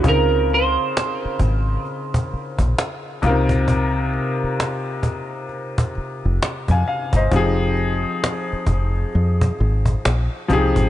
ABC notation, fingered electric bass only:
X:1
M:4/4
L:1/16
Q:"Swing 16ths" 1/4=66
K:Fm
V:1 name="Fingered electric bass" clef=bass
D,,4 z2 A,,,2 z3 B,,, z2 C,,2- | C,,3 z8 F,,, z F,, z G,,, | F,,,4 z2 F,,,2 F,,2 A,,,2 B,,, z C,, A,,, |]